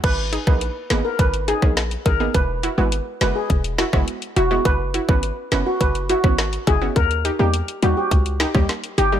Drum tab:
CC |x---------------|----------------|----------------|----------------|
HH |x-x-x-x-xxx-xxx-|x-x-x-x-xxx-xxx-|x-x-x-x-xxx-xxx-|xxx-xxx-xxx-xxx-|
SD |------o----ro---|------o---or----|------o----ro---|----------oro---|
BD |o--o----o--o--o-|o-------o--o----|o--o----o--o--o-|o-------o--o----|